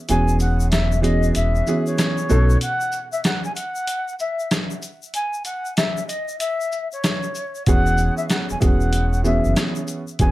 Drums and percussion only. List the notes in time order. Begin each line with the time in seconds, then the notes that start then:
0.09 closed hi-hat, shaker
0.28 shaker
0.40 shaker
0.60 shaker
0.72 cross-stick, snare, closed hi-hat, shaker
0.92 shaker
1.04 closed hi-hat, shaker
1.23 shaker
1.35 closed hi-hat, shaker
1.55 shaker
1.67 shaker
1.87 shaker
1.98 cross-stick, snare, closed hi-hat, shaker
2.18 shaker
2.29 shaker
2.50 shaker
2.61 closed hi-hat, shaker
2.81 shaker
2.92 shaker
3.13 shaker
3.24 cross-stick, snare, closed hi-hat, shaker
3.45 shaker
3.56 closed hi-hat, shaker
3.76 shaker
3.87 closed hi-hat, shaker
4.08 shaker
4.19 shaker
4.40 shaker
4.51 cross-stick, snare, closed hi-hat, shaker
4.71 shaker
4.82 shaker
5.03 shaker
5.14 closed hi-hat, shaker
5.34 shaker
5.45 closed hi-hat, shaker
5.66 shaker
5.77 cross-stick, snare, closed hi-hat, shaker
5.97 shaker
6.09 closed hi-hat, shaker
6.29 shaker
6.40 closed hi-hat, shaker
6.61 shaker
6.72 shaker
6.92 shaker
7.04 cross-stick, snare, closed hi-hat, shaker
7.23 shaker
7.35 shaker
7.55 shaker
7.66 kick, closed hi-hat, shaker
7.86 shaker
7.97 shaker
8.18 shaker
8.30 cross-stick, snare, closed hi-hat, shaker
8.50 shaker
8.62 kick, closed hi-hat, shaker
8.81 shaker
8.93 closed hi-hat, shaker
9.13 shaker
9.25 shaker
9.45 shaker
9.56 cross-stick, snare, closed hi-hat, shaker
9.76 shaker
9.87 shaker
10.08 shaker
10.19 kick, closed hi-hat, shaker